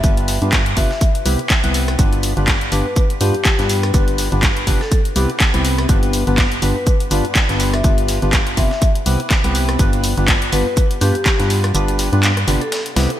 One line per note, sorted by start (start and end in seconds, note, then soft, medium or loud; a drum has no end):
0.00 0.39 G1 loud
0.00 0.39 G2 medium
0.00 0.39 B3 medium
0.00 0.39 D4 medium
0.00 0.39 F4 medium
0.00 0.39 G4 medium
0.00 0.39 B4 loud
0.00 0.14 E5 medium
0.00 kick loud
0.00 closed hi-hat medium
0.00 shaker medium
0.17 closed hi-hat medium
0.28 snare soft
0.28 open hi-hat loud
0.28 shaker medium
0.42 0.61 G2 medium
0.42 0.75 G2 medium
0.42 0.61 B3 medium
0.42 0.61 D4 medium
0.42 0.61 F4 medium
0.42 0.61 G4 medium
0.42 0.61 B4 medium
0.42 closed hi-hat soft
0.52 kick loud
0.52 snare loud
0.52 clap loud
0.52 closed hi-hat medium
0.52 shaker medium
0.66 closed hi-hat soft
0.77 0.88 G1 medium
0.77 0.91 C3 medium
0.77 0.91 B3 medium
0.77 0.91 D4 medium
0.77 0.91 F4 medium
0.77 0.91 G4 medium
0.77 0.91 B4 loud
0.77 1.07 E5 medium
0.77 kick medium
0.77 open hi-hat loud
0.77 shaker medium
0.91 snare medium
1.01 kick loud
1.01 closed hi-hat medium
1.01 shaker medium
1.15 closed hi-hat soft
1.26 1.37 C2 medium
1.26 1.39 C3 loud
1.26 1.39 B3 medium
1.26 1.39 C4 medium
1.26 1.39 E4 medium
1.26 1.39 G4 medium
1.26 1.39 B4 loud
1.26 open hi-hat loud
1.26 shaker medium
1.39 closed hi-hat soft
1.50 kick loud
1.50 snare loud
1.50 clap loud
1.50 closed hi-hat medium
1.50 shaker medium
1.64 1.97 C2 loud
1.64 1.96 C3 medium
1.64 1.96 B3 medium
1.64 1.96 C4 medium
1.64 1.96 E4 medium
1.64 1.96 G4 medium
1.64 1.96 B4 loud
1.64 closed hi-hat soft
1.74 open hi-hat loud
1.74 shaker medium
1.88 cross-stick medium
1.88 closed hi-hat soft
1.99 2.34 G1 loud
1.99 2.34 G2 medium
1.99 2.34 B3 medium
1.99 2.34 D4 medium
1.99 2.34 F4 medium
1.99 2.34 G4 medium
1.99 2.34 B4 loud
1.99 kick loud
1.99 closed hi-hat medium
1.99 shaker medium
2.13 closed hi-hat soft
2.23 open hi-hat loud
2.23 shaker medium
2.37 2.70 G1 loud
2.37 2.56 G2 medium
2.37 2.56 B3 medium
2.37 2.56 D4 medium
2.37 2.56 F4 medium
2.37 2.56 G4 medium
2.37 2.56 B4 medium
2.37 closed hi-hat soft
2.48 kick loud
2.48 snare loud
2.48 clap loud
2.48 closed hi-hat medium
2.48 open hi-hat medium
2.61 closed hi-hat soft
2.72 2.83 G1 medium
2.72 2.86 G2 medium
2.72 2.86 B3 medium
2.72 2.86 D4 medium
2.72 2.86 F4 medium
2.72 2.86 G4 medium
2.72 2.81 B4 medium
2.72 2.86 B4 medium
2.72 open hi-hat loud
2.72 shaker medium
2.86 2.93 B4 medium
2.96 kick loud
2.96 closed hi-hat medium
2.96 shaker medium
3.10 closed hi-hat soft
3.21 3.35 G2 loud
3.21 3.32 G2 medium
3.21 3.35 B3 medium
3.21 3.35 D4 medium
3.21 3.35 F4 medium
3.21 3.75 G4 medium
3.21 3.35 G4 medium
3.21 3.35 B4 loud
3.21 open hi-hat loud
3.21 shaker medium
3.34 closed hi-hat soft
3.45 kick loud
3.45 snare loud
3.45 clap loud
3.45 closed hi-hat medium
3.45 shaker medium
3.59 3.92 G2 medium
3.59 3.91 G2 medium
3.59 3.91 B3 medium
3.59 3.91 D4 medium
3.59 3.91 F4 medium
3.59 3.91 G4 medium
3.59 3.91 B4 loud
3.59 snare soft
3.59 closed hi-hat medium
3.70 snare medium
3.70 open hi-hat loud
3.70 shaker medium
3.83 cross-stick medium
3.83 closed hi-hat soft
3.94 4.29 G1 loud
3.94 4.29 G2 medium
3.94 4.29 B3 medium
3.94 4.29 D4 medium
3.94 4.29 F4 medium
3.94 4.29 G4 medium
3.94 4.29 B4 loud
3.94 kick loud
3.94 closed hi-hat medium
3.94 shaker medium
4.08 closed hi-hat soft
4.18 snare soft
4.18 open hi-hat loud
4.18 shaker medium
4.32 4.65 G1 loud
4.32 4.51 G2 medium
4.32 4.51 B3 medium
4.32 4.51 D4 medium
4.32 4.51 F4 medium
4.32 4.51 G4 medium
4.32 4.51 B4 medium
4.32 closed hi-hat soft
4.43 kick loud
4.43 snare loud
4.43 clap loud
4.43 closed hi-hat medium
4.43 shaker medium
4.57 closed hi-hat soft
4.67 4.78 G1 loud
4.67 4.81 C3 medium
4.67 4.81 B3 medium
4.67 4.81 D4 medium
4.67 4.81 F4 medium
4.67 4.81 G4 medium
4.67 4.81 B4 medium
4.67 kick medium
4.67 open hi-hat loud
4.67 shaker medium
4.81 4.97 A4 medium
4.81 snare medium
4.92 kick loud
4.92 closed hi-hat medium
4.92 shaker medium
5.05 closed hi-hat soft
5.16 5.27 C2 medium
5.16 5.30 C3 loud
5.16 5.30 B3 medium
5.16 5.30 C4 medium
5.16 5.30 E4 medium
5.16 5.30 G4 medium
5.16 5.30 B4 loud
5.16 open hi-hat loud
5.16 shaker medium
5.30 closed hi-hat soft
5.40 kick loud
5.40 snare loud
5.40 clap loud
5.40 closed hi-hat medium
5.40 shaker medium
5.54 5.87 C2 medium
5.54 5.87 C3 medium
5.54 5.87 B3 medium
5.54 5.87 C4 medium
5.54 5.87 E4 medium
5.54 5.87 G4 medium
5.54 5.87 B4 loud
5.54 closed hi-hat soft
5.65 open hi-hat loud
5.65 shaker medium
5.78 cross-stick medium
5.78 closed hi-hat soft
5.89 6.24 G1 loud
5.89 6.24 G2 medium
5.89 6.24 B3 medium
5.89 6.24 D4 medium
5.89 6.24 F4 medium
5.89 6.24 G4 medium
5.89 6.24 B4 loud
5.89 kick loud
5.89 closed hi-hat medium
5.89 shaker medium
6.03 closed hi-hat soft
6.13 open hi-hat loud
6.13 shaker medium
6.27 6.60 G1 loud
6.27 6.46 G2 medium
6.27 6.46 B3 medium
6.27 6.46 D4 medium
6.27 6.46 F4 medium
6.27 6.46 G4 medium
6.27 6.46 B4 medium
6.27 closed hi-hat soft
6.38 kick loud
6.38 snare loud
6.38 clap loud
6.38 closed hi-hat medium
6.38 open hi-hat medium
6.52 closed hi-hat soft
6.62 6.73 G1 medium
6.62 6.76 G2 medium
6.62 6.76 B3 medium
6.62 6.76 D4 medium
6.62 6.76 F4 medium
6.62 6.76 G4 medium
6.62 6.71 B4 medium
6.62 6.76 B4 medium
6.62 open hi-hat loud
6.62 shaker medium
6.76 6.83 B4 medium
6.87 kick loud
6.87 closed hi-hat medium
6.87 shaker medium
7.00 closed hi-hat soft
7.11 7.22 G1 loud
7.11 7.25 G2 loud
7.11 7.25 B3 medium
7.11 7.25 D4 medium
7.11 7.25 F4 loud
7.11 7.25 G4 medium
7.11 7.25 B4 loud
7.11 open hi-hat loud
7.11 shaker medium
7.25 closed hi-hat soft
7.35 kick loud
7.35 snare loud
7.35 clap loud
7.35 closed hi-hat medium
7.35 shaker medium
7.49 7.82 G1 medium
7.49 7.82 G2 medium
7.49 7.82 B3 medium
7.49 7.82 D4 medium
7.49 7.82 F4 medium
7.49 7.82 G4 medium
7.49 7.82 B4 loud
7.49 snare soft
7.49 closed hi-hat soft
7.60 snare medium
7.60 open hi-hat loud
7.60 shaker medium
7.74 7.94 E5 medium
7.74 cross-stick medium
7.74 closed hi-hat soft
7.84 8.20 G1 loud
7.84 8.19 G2 medium
7.84 8.19 B3 medium
7.84 8.19 D4 medium
7.84 8.19 F4 medium
7.84 8.19 G4 medium
7.84 8.19 B4 loud
7.84 kick loud
7.84 closed hi-hat medium
7.84 shaker medium
7.98 closed hi-hat medium
8.08 snare soft
8.08 open hi-hat loud
8.08 shaker medium
8.22 8.55 G1 loud
8.22 8.41 G2 medium
8.22 8.41 B3 medium
8.22 8.41 D4 medium
8.22 8.41 F4 medium
8.22 8.41 G4 medium
8.22 8.41 B4 medium
8.22 closed hi-hat soft
8.33 kick loud
8.33 snare loud
8.33 clap loud
8.33 closed hi-hat medium
8.33 shaker medium
8.47 closed hi-hat medium
8.57 8.68 G1 loud
8.57 8.71 C3 medium
8.57 8.71 B3 medium
8.57 8.71 D4 medium
8.57 8.71 F4 medium
8.57 8.71 G4 medium
8.57 8.71 B4 loud
8.57 8.87 E5 medium
8.57 kick medium
8.57 open hi-hat loud
8.57 shaker medium
8.71 snare medium
8.82 kick loud
8.82 closed hi-hat medium
8.82 shaker medium
8.95 closed hi-hat medium
9.06 9.17 C2 medium
9.06 9.20 C3 loud
9.06 9.20 B3 medium
9.06 9.20 C4 medium
9.06 9.20 E4 medium
9.06 9.20 G4 medium
9.06 9.20 B4 loud
9.06 open hi-hat loud
9.06 shaker medium
9.20 closed hi-hat soft
9.30 kick loud
9.30 snare loud
9.30 clap loud
9.30 closed hi-hat medium
9.30 shaker medium
9.44 9.77 C2 loud
9.44 9.77 C3 medium
9.44 9.77 B3 medium
9.44 9.77 C4 medium
9.44 9.77 E4 medium
9.44 9.77 G4 medium
9.44 9.77 B4 loud
9.44 closed hi-hat medium
9.44 closed hi-hat soft
9.55 open hi-hat loud
9.55 shaker medium
9.69 cross-stick medium
9.69 closed hi-hat soft
9.79 10.15 G1 loud
9.79 10.14 G2 medium
9.79 10.14 B3 medium
9.79 10.14 D4 medium
9.79 10.14 F4 medium
9.79 10.14 G4 medium
9.79 10.14 B4 loud
9.79 kick loud
9.79 closed hi-hat medium
9.79 shaker medium
9.93 closed hi-hat medium
10.04 open hi-hat loud
10.04 shaker medium
10.17 10.50 G1 medium
10.17 10.36 G2 medium
10.17 10.36 B3 medium
10.17 10.36 D4 medium
10.17 10.36 F4 medium
10.17 10.36 G4 medium
10.17 10.36 B4 medium
10.17 closed hi-hat soft
10.28 kick loud
10.28 snare loud
10.28 clap loud
10.28 closed hi-hat medium
10.28 open hi-hat medium
10.42 closed hi-hat medium
10.53 10.64 G1 medium
10.53 10.66 G2 medium
10.53 10.66 B3 medium
10.53 10.66 D4 medium
10.53 10.66 F4 medium
10.53 10.66 G4 medium
10.53 10.61 B4 medium
10.53 10.66 B4 medium
10.53 open hi-hat loud
10.53 shaker medium
10.66 10.73 B4 medium
10.77 kick loud
10.77 closed hi-hat medium
10.77 shaker medium
10.91 closed hi-hat medium
11.01 11.12 G2 medium
11.01 11.15 G2 loud
11.01 11.15 B3 loud
11.01 11.15 D4 medium
11.01 11.15 F4 medium
11.01 11.15 G4 loud
11.01 11.56 G4 medium
11.01 11.15 B4 loud
11.01 open hi-hat medium
11.01 shaker medium
11.15 closed hi-hat soft
11.26 kick loud
11.26 snare loud
11.26 clap loud
11.26 closed hi-hat medium
11.26 shaker medium
11.39 11.72 G2 medium
11.39 11.72 B3 medium
11.39 11.72 D4 medium
11.39 11.72 F4 medium
11.39 11.72 G4 medium
11.39 11.72 B4 loud
11.39 snare soft
11.39 closed hi-hat medium
11.50 snare medium
11.50 open hi-hat loud
11.50 shaker medium
11.64 cross-stick medium
11.64 closed hi-hat soft
11.74 12.10 G1 loud
11.74 12.09 G2 medium
11.74 12.09 B3 medium
11.74 12.09 D4 medium
11.74 12.09 F4 medium
11.74 12.09 G4 medium
11.74 12.09 B4 loud
11.74 closed hi-hat medium
11.74 shaker medium
11.88 closed hi-hat medium
11.99 snare soft
11.99 open hi-hat loud
11.99 shaker medium
12.13 12.45 G2 loud
12.13 12.32 G2 medium
12.13 12.32 B3 medium
12.13 12.32 D4 medium
12.13 12.32 F4 medium
12.13 12.32 G4 medium
12.13 12.32 B4 medium
12.13 closed hi-hat soft
12.23 snare loud
12.23 clap loud
12.23 closed hi-hat medium
12.23 shaker medium
12.37 cross-stick medium
12.37 closed hi-hat medium
12.48 12.59 G1 medium
12.48 12.61 C3 medium
12.48 12.61 B3 medium
12.48 12.61 D4 medium
12.48 12.61 F4 medium
12.48 12.61 G4 medium
12.48 12.61 B4 medium
12.48 open hi-hat loud
12.48 shaker medium
12.61 12.78 A4 medium
12.61 closed hi-hat soft
12.72 snare loud
12.72 closed hi-hat medium
12.72 open hi-hat medium
12.86 closed hi-hat medium
12.96 13.07 C2 loud
12.96 13.10 C3 loud
12.96 13.10 B3 loud
12.96 13.10 C4 medium
12.96 13.10 E4 medium
12.96 13.10 G4 medium
12.96 13.10 B4 loud
12.96 snare loud
12.96 open hi-hat medium
13.10 closed hi-hat soft